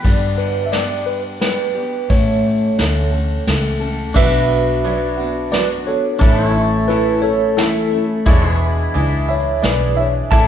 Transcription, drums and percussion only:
0.05 kick loud
0.05 ride medium
0.39 ride medium
0.73 snare medium
0.73 ride medium
1.41 snare medium
1.41 ride medium
2.10 kick loud
2.10 ride medium
2.79 snare medium
2.79 ride medium
3.47 snare medium
3.47 ride medium
4.16 kick loud
4.16 crash loud
4.84 closed hi-hat medium
5.53 snare medium
5.53 closed hi-hat medium
6.21 kick loud
6.21 closed hi-hat medium
6.90 closed hi-hat medium
7.58 snare medium
7.58 closed hi-hat medium
8.26 kick loud
8.26 closed hi-hat medium
8.95 closed hi-hat medium
9.63 snare medium
9.63 closed hi-hat medium
10.31 kick loud
10.31 closed hi-hat medium

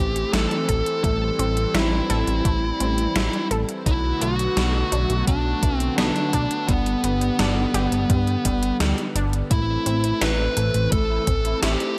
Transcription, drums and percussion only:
0.16 closed hi-hat soft
0.33 snare loud
0.33 closed hi-hat medium
0.51 closed hi-hat soft
0.69 kick medium
0.69 closed hi-hat medium
0.86 closed hi-hat soft
1.04 kick loud
1.04 closed hi-hat medium
1.39 closed hi-hat medium
1.57 closed hi-hat soft
1.75 snare loud
1.75 closed hi-hat medium
2.10 snare soft
2.10 closed hi-hat medium
2.27 closed hi-hat soft
2.45 kick loud
2.45 closed hi-hat medium
2.80 closed hi-hat medium
2.98 closed hi-hat soft
3.16 snare loud
3.16 closed hi-hat medium
3.33 closed hi-hat soft
3.51 closed hi-hat medium
3.69 closed hi-hat soft
3.86 kick loud
3.86 closed hi-hat medium
4.22 closed hi-hat medium
4.39 closed hi-hat soft
4.57 snare loud
4.57 closed hi-hat medium
4.92 closed hi-hat medium
5.10 closed hi-hat medium
5.27 kick loud
5.27 closed hi-hat medium
5.63 kick loud
5.63 closed hi-hat medium
5.80 closed hi-hat soft
5.98 snare loud
5.98 closed hi-hat medium
6.16 closed hi-hat soft
6.33 kick medium
6.33 closed hi-hat medium
6.51 closed hi-hat medium
6.69 kick loud
6.69 closed hi-hat medium
6.86 closed hi-hat soft
7.04 closed hi-hat medium
7.21 closed hi-hat medium
7.39 snare loud
7.39 closed hi-hat medium
7.74 snare soft
7.74 closed hi-hat medium
7.92 closed hi-hat medium
8.10 kick loud
8.10 closed hi-hat medium
8.27 closed hi-hat soft
8.45 kick medium
8.45 closed hi-hat medium
8.63 closed hi-hat medium
8.80 snare loud
8.80 closed hi-hat medium
8.98 closed hi-hat soft
9.16 closed hi-hat medium
9.33 closed hi-hat medium
9.51 kick loud
9.51 closed hi-hat medium
9.86 closed hi-hat medium
10.04 closed hi-hat medium
10.21 snare loud
10.21 closed hi-hat medium
10.57 closed hi-hat medium
10.74 closed hi-hat medium
10.92 kick loud
10.92 closed hi-hat medium
11.27 kick loud
11.27 closed hi-hat medium
11.45 closed hi-hat medium
11.63 snare loud
11.63 closed hi-hat medium
11.80 closed hi-hat soft

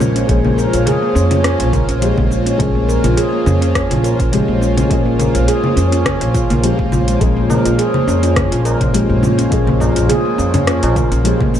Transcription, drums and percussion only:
0.00 low conga medium
0.00 cabasa medium
0.16 closed hi-hat soft
0.16 cabasa soft
0.29 kick loud
0.29 closed hi-hat medium
0.29 cabasa soft
0.45 low conga medium
0.59 cabasa medium
0.73 closed hi-hat soft
0.73 cabasa soft
0.87 closed hi-hat medium
0.87 low conga medium
0.87 cabasa soft
1.16 cabasa medium
1.31 closed hi-hat soft
1.31 low conga medium
1.31 cabasa soft
1.44 cross-stick medium
1.44 closed hi-hat medium
1.44 cabasa soft
1.60 closed hi-hat medium
1.73 kick loud
1.73 closed hi-hat soft
1.73 low conga medium
1.73 cabasa medium
1.89 closed hi-hat soft
1.89 cabasa soft
2.02 closed hi-hat medium
2.02 cabasa soft
2.18 kick loud
2.18 low conga medium
2.32 cabasa medium
2.47 closed hi-hat soft
2.47 cabasa soft
2.60 kick loud
2.60 closed hi-hat medium
2.60 low conga medium
2.60 cabasa soft
2.89 cabasa medium
3.04 closed hi-hat soft
3.04 low conga medium
3.04 cabasa soft
3.17 closed hi-hat medium
3.17 cabasa soft
3.46 low conga medium
3.46 cabasa medium
3.62 closed hi-hat soft
3.62 cabasa soft
3.75 kick loud
3.75 cross-stick medium
3.75 closed hi-hat medium
3.75 cabasa soft
3.91 closed hi-hat medium
3.91 low conga medium
4.04 closed hi-hat soft
4.04 cabasa medium
4.20 kick loud
4.20 closed hi-hat soft
4.20 cabasa soft
4.33 closed hi-hat medium
4.33 low conga medium
4.33 cabasa soft
4.63 cabasa medium
4.78 closed hi-hat soft
4.78 low conga medium
4.78 cabasa soft
4.91 kick loud
4.91 closed hi-hat medium
4.91 cabasa soft
5.20 closed hi-hat soft
5.20 low conga medium
5.20 cabasa medium
5.35 closed hi-hat medium
5.35 cabasa soft
5.48 closed hi-hat medium
5.48 cabasa soft
5.64 low conga medium
5.77 closed hi-hat soft
5.77 cabasa medium
5.92 closed hi-hat soft
5.92 cabasa soft
6.06 kick medium
6.06 cross-stick medium
6.06 closed hi-hat medium
6.06 low conga medium
6.06 cabasa soft
6.21 closed hi-hat medium
6.34 kick loud
6.34 closed hi-hat soft
6.34 cabasa medium
6.50 closed hi-hat soft
6.50 low conga medium
6.50 cabasa soft
6.64 closed hi-hat medium
6.64 cabasa soft
6.79 kick loud
6.92 low conga medium
6.92 cabasa medium
7.08 closed hi-hat soft
7.08 cabasa soft
7.21 kick loud
7.21 closed hi-hat medium
7.21 cabasa soft
7.50 tabla na medium
7.50 tabla tin soft
7.50 low conga medium
7.50 cabasa medium
7.65 closed hi-hat medium
7.65 tabla tin medium
7.65 cabasa soft
7.79 closed hi-hat medium
7.79 cabasa soft
7.94 low conga medium
8.08 tabla na soft
8.08 cabasa medium
8.23 closed hi-hat soft
8.23 tabla tin medium
8.23 cabasa soft
8.36 kick loud
8.36 cross-stick medium
8.36 closed hi-hat medium
8.36 low conga medium
8.36 cabasa soft
8.52 closed hi-hat medium
8.65 closed hi-hat soft
8.65 tabla na medium
8.65 cabasa medium
8.81 kick loud
8.81 closed hi-hat soft
8.81 tabla tin soft
8.81 low conga medium
8.81 cabasa soft
8.94 closed hi-hat medium
8.94 cabasa soft
9.10 tabla ge medium
9.23 low conga medium
9.23 cabasa medium
9.39 closed hi-hat soft
9.39 cabasa soft
9.52 kick loud
9.52 closed hi-hat medium
9.52 cabasa soft
9.67 low conga medium
9.81 tabla na medium
9.81 tabla tin soft
9.81 tabla ge medium
9.81 cabasa medium
9.96 closed hi-hat medium
9.96 tabla tin medium
9.96 cabasa soft
10.10 closed hi-hat medium
10.10 low conga medium
10.10 cabasa soft
10.38 tabla na soft
10.38 cabasa medium
10.54 closed hi-hat soft
10.54 tabla tin medium
10.54 low conga medium
10.54 tabla ge medium
10.54 cabasa soft
10.67 cross-stick medium
10.67 closed hi-hat medium
10.67 cabasa soft
10.83 closed hi-hat medium
10.83 tabla na medium
10.96 kick loud
10.96 closed hi-hat soft
10.96 low conga medium
10.96 cabasa medium
11.12 closed hi-hat soft
11.12 cabasa soft
11.25 closed hi-hat medium
11.25 cabasa soft
11.40 kick loud
11.40 low conga medium
11.55 cabasa medium

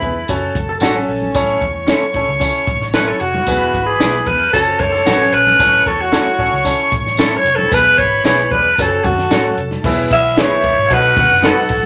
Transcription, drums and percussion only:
0.01 kick medium
0.01 closed hi-hat medium
0.01 muted conga soft
0.28 kick medium
0.28 closed hi-hat medium
0.28 tambourine medium
0.55 kick loud
0.55 closed hi-hat medium
0.55 muted conga soft
0.80 snare loud
0.80 closed hi-hat medium
0.80 tambourine medium
0.80 high conga medium
1.08 open hi-hat medium
1.22 high conga medium
1.34 kick loud
1.34 closed hi-hat medium
1.34 tambourine medium
1.34 muted conga medium
1.48 closed hi-hat soft
1.61 kick medium
1.61 closed hi-hat medium
1.61 muted conga soft
1.88 snare loud
1.88 closed hi-hat medium
1.88 tambourine medium
1.88 high conga medium
2.02 closed hi-hat medium
2.14 kick medium
2.14 closed hi-hat medium
2.14 muted conga soft
2.41 kick medium
2.41 closed hi-hat medium
2.41 tambourine medium
2.67 kick loud
2.67 closed hi-hat medium
2.67 muted conga medium
2.82 snare soft
2.93 snare loud
2.93 closed hi-hat medium
2.93 tambourine medium
2.93 high conga medium
3.20 closed hi-hat medium
3.34 high conga medium
3.46 kick loud
3.46 closed hi-hat medium
3.46 tambourine medium
3.46 muted conga soft
3.60 closed hi-hat soft
3.74 kick medium
3.74 closed hi-hat medium
3.74 muted conga soft
4.00 snare loud
4.00 closed hi-hat loud
4.00 tambourine medium
4.00 high conga medium
4.13 closed hi-hat medium
4.26 kick medium
4.26 closed hi-hat medium
4.26 muted conga soft
4.54 kick medium
4.54 closed hi-hat medium
4.54 tambourine medium
4.80 kick loud
4.80 closed hi-hat medium
4.80 muted conga soft
4.95 snare soft
5.07 snare loud
5.07 closed hi-hat medium
5.07 tambourine medium
5.07 high conga medium
5.33 closed hi-hat medium
5.47 high conga medium
5.59 kick loud
5.59 closed hi-hat medium
5.59 tambourine medium
5.59 muted conga medium
5.73 closed hi-hat medium
5.86 kick medium
5.86 closed hi-hat medium
6.12 snare loud
6.12 closed hi-hat medium
6.12 tambourine medium
6.12 high conga medium
6.39 kick medium
6.39 closed hi-hat medium
6.39 muted conga soft
6.65 kick medium
6.65 closed hi-hat loud
6.65 tambourine medium
6.92 kick loud
6.92 closed hi-hat medium
6.92 muted conga soft
7.07 snare soft
7.17 snare loud
7.17 closed hi-hat medium
7.17 tambourine loud
7.17 high conga medium
7.46 closed hi-hat medium
7.58 high conga medium
7.72 kick loud
7.72 closed hi-hat medium
7.72 tambourine medium
7.72 muted conga soft
7.85 closed hi-hat soft
7.98 kick medium
7.98 closed hi-hat medium
7.98 muted conga soft
8.25 snare loud
8.25 closed hi-hat loud
8.25 tambourine medium
8.25 high conga medium
8.51 kick medium
8.51 closed hi-hat medium
8.51 muted conga soft
8.78 kick medium
8.78 closed hi-hat loud
8.78 tambourine medium
9.04 kick loud
9.04 closed hi-hat medium
9.04 muted conga medium
9.04 low conga medium
9.18 snare soft
9.31 snare loud
9.31 closed hi-hat medium
9.31 tambourine medium
9.31 high conga medium
9.58 closed hi-hat medium
9.71 snare soft
9.71 high conga medium
9.84 kick loud
9.84 crash loud
9.84 muted conga medium
10.11 kick loud
10.11 ride medium
10.37 snare loud
10.37 ride medium
10.37 high conga medium
10.64 kick medium
10.64 ride medium
10.64 muted conga medium
10.91 kick loud
10.91 ride medium
11.17 kick loud
11.17 ride medium
11.17 muted conga medium
11.17 low conga medium
11.31 snare soft
11.43 snare loud
11.43 ride medium
11.43 high conga medium
11.69 kick medium
11.69 open hi-hat medium
11.69 ride medium

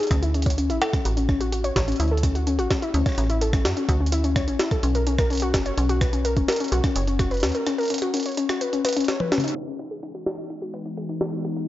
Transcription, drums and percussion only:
0.03 closed hi-hat soft
0.07 kick loud
0.07 cross-stick medium
0.07 closed hi-hat soft
0.11 closed hi-hat medium
0.23 closed hi-hat soft
0.34 closed hi-hat soft
0.42 kick loud
0.42 cross-stick soft
0.42 closed hi-hat medium
0.46 closed hi-hat soft
0.50 closed hi-hat medium
0.58 closed hi-hat medium
0.70 closed hi-hat soft
0.82 snare loud
0.82 closed hi-hat medium
0.93 kick loud
0.93 cross-stick medium
0.93 closed hi-hat soft
1.05 closed hi-hat medium
1.17 closed hi-hat soft
1.29 kick loud
1.29 cross-stick soft
1.41 closed hi-hat soft
1.52 closed hi-hat medium
1.64 closed hi-hat soft
1.76 kick loud
1.76 cross-stick medium
1.76 snare loud
1.76 closed hi-hat medium
1.88 closed hi-hat soft
1.92 closed hi-hat soft
1.96 closed hi-hat soft
2.00 closed hi-hat medium
2.04 closed hi-hat soft
2.08 closed hi-hat soft
2.17 closed hi-hat soft
2.23 kick loud
2.23 cross-stick soft
2.23 closed hi-hat medium
2.35 closed hi-hat soft
2.47 closed hi-hat medium
2.59 closed hi-hat soft
2.71 kick loud
2.71 cross-stick medium
2.71 snare loud
2.71 closed hi-hat medium
2.82 closed hi-hat soft
2.94 closed hi-hat medium
3.06 kick loud
3.06 cross-stick soft
3.06 closed hi-hat soft
3.09 cross-stick soft
3.12 cross-stick soft
3.15 cross-stick soft
3.18 cross-stick soft
3.18 closed hi-hat medium
3.21 cross-stick soft
3.24 cross-stick soft
3.27 cross-stick soft
3.27 closed hi-hat soft
3.41 closed hi-hat medium
3.53 kick loud
3.53 cross-stick medium
3.53 closed hi-hat soft
3.65 snare loud
3.65 closed hi-hat medium
3.77 closed hi-hat soft
3.89 kick loud
3.89 cross-stick soft
3.89 closed hi-hat medium
4.06 closed hi-hat soft
4.12 closed hi-hat medium
4.24 closed hi-hat soft
4.36 kick loud
4.36 cross-stick medium
4.36 closed hi-hat medium
4.48 closed hi-hat soft
4.59 snare loud
4.59 closed hi-hat medium
4.71 kick loud
4.71 cross-stick medium
4.71 closed hi-hat soft
4.83 closed hi-hat medium
4.95 closed hi-hat soft
5.07 closed hi-hat medium
5.18 kick loud
5.18 cross-stick medium
5.18 closed hi-hat soft
5.30 closed hi-hat soft
5.33 closed hi-hat soft
5.35 closed hi-hat soft
5.37 closed hi-hat soft
5.40 closed hi-hat medium
5.42 closed hi-hat soft
5.54 kick loud
5.54 cross-stick medium
5.54 snare loud
5.54 closed hi-hat medium
5.66 closed hi-hat soft
5.78 closed hi-hat medium
5.89 closed hi-hat soft
6.01 kick loud
6.01 cross-stick medium
6.01 closed hi-hat medium
6.13 closed hi-hat soft
6.25 closed hi-hat medium
6.37 kick loud
6.37 closed hi-hat soft
6.48 snare loud
6.48 closed hi-hat medium
6.52 closed hi-hat medium
6.56 closed hi-hat medium
6.60 closed hi-hat soft
6.64 closed hi-hat soft
6.68 closed hi-hat soft
6.72 closed hi-hat medium
6.84 kick loud
6.84 cross-stick medium
6.84 closed hi-hat soft
6.96 closed hi-hat medium
7.07 closed hi-hat soft
7.19 kick medium
7.19 cross-stick medium
7.19 closed hi-hat medium
7.31 closed hi-hat soft
7.34 closed hi-hat soft
7.37 closed hi-hat soft
7.40 snare loud
7.40 closed hi-hat soft
7.43 closed hi-hat medium
7.46 closed hi-hat soft
7.49 closed hi-hat soft
7.52 closed hi-hat soft
7.55 closed hi-hat soft
7.67 cross-stick medium
7.67 closed hi-hat medium
7.78 closed hi-hat soft
7.81 closed hi-hat soft
7.83 closed hi-hat soft
7.85 closed hi-hat soft
7.88 closed hi-hat soft
7.90 closed hi-hat medium
7.94 closed hi-hat medium
7.98 cross-stick medium
7.98 closed hi-hat medium
8.02 closed hi-hat soft
8.14 closed hi-hat medium
8.17 closed hi-hat medium
8.20 closed hi-hat soft
8.23 closed hi-hat soft
8.26 closed hi-hat soft
8.29 closed hi-hat soft
8.32 closed hi-hat soft
8.35 closed hi-hat soft
8.37 closed hi-hat medium
8.49 cross-stick medium
8.49 closed hi-hat soft
8.61 closed hi-hat medium
8.73 closed hi-hat soft
8.85 cross-stick medium
8.85 closed hi-hat medium
8.89 closed hi-hat medium
8.93 closed hi-hat medium
8.97 closed hi-hat soft
9.00 closed hi-hat soft
9.04 snare medium
9.04 closed hi-hat soft
9.08 closed hi-hat medium
9.20 high tom medium
9.32 snare medium
9.32 closed hi-hat soft
9.38 closed hi-hat medium
9.38 mid tom medium
9.44 closed hi-hat soft
9.48 closed hi-hat medium
9.56 closed hi-hat medium
9.67 closed hi-hat soft
9.79 closed hi-hat medium
9.91 closed hi-hat soft
10.03 closed hi-hat medium
10.15 closed hi-hat soft
10.26 snare loud
10.26 closed hi-hat medium
10.29 closed hi-hat medium
10.31 closed hi-hat medium
10.34 closed hi-hat soft
10.36 closed hi-hat soft
10.38 closed hi-hat soft
10.50 closed hi-hat medium
10.62 closed hi-hat soft
10.74 closed hi-hat medium
10.85 closed hi-hat soft
10.97 closed hi-hat medium
11.09 closed hi-hat soft
11.21 snare loud
11.21 closed hi-hat medium
11.33 closed hi-hat soft
11.37 closed hi-hat soft
11.41 closed hi-hat soft
11.45 closed hi-hat medium
11.56 closed hi-hat soft

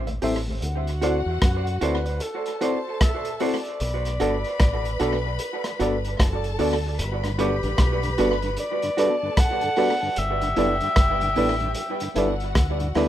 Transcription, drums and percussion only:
0.07 closed hi-hat soft
0.22 open hi-hat medium
0.62 closed hi-hat medium
0.87 closed hi-hat soft
1.02 closed hi-hat medium
1.42 kick loud
1.42 cross-stick loud
1.42 closed hi-hat medium
1.67 closed hi-hat soft
1.81 closed hi-hat medium
2.06 closed hi-hat soft
2.20 closed hi-hat loud
2.46 closed hi-hat medium
2.61 closed hi-hat medium
3.01 kick loud
3.01 cross-stick loud
3.01 closed hi-hat loud
3.25 closed hi-hat soft
3.40 open hi-hat medium
3.65 closed hi-hat soft
3.80 closed hi-hat medium
4.05 closed hi-hat medium
4.20 closed hi-hat medium
4.44 closed hi-hat soft
4.60 kick loud
4.60 cross-stick loud
4.60 closed hi-hat medium
4.85 closed hi-hat soft
5.00 closed hi-hat medium
5.39 closed hi-hat medium
5.64 cross-stick medium
5.64 closed hi-hat medium
5.80 closed hi-hat medium
6.04 closed hi-hat soft
6.20 kick loud
6.20 cross-stick loud
6.20 closed hi-hat loud
6.44 closed hi-hat medium
6.59 open hi-hat medium
6.99 closed hi-hat loud
7.24 cross-stick medium
7.24 closed hi-hat soft
7.39 closed hi-hat medium
7.63 closed hi-hat soft
7.78 kick loud
7.78 cross-stick loud
7.78 closed hi-hat medium
8.03 closed hi-hat soft
8.18 closed hi-hat medium
8.42 closed hi-hat soft
8.57 closed hi-hat loud
8.82 closed hi-hat medium
8.98 closed hi-hat medium
9.37 kick loud
9.37 cross-stick loud
9.37 closed hi-hat loud
9.61 closed hi-hat soft
9.76 open hi-hat medium
10.16 closed hi-hat medium
10.41 closed hi-hat soft
10.56 closed hi-hat medium
10.80 closed hi-hat soft
10.96 kick loud
10.96 cross-stick loud
10.96 closed hi-hat medium
11.21 closed hi-hat soft
11.36 open hi-hat medium
11.60 closed hi-hat soft
11.75 closed hi-hat medium
12.00 closed hi-hat medium
12.16 closed hi-hat medium
12.40 closed hi-hat soft
12.55 kick loud
12.55 cross-stick loud
12.55 closed hi-hat loud
12.80 closed hi-hat medium
12.95 cross-stick medium
12.95 open hi-hat medium

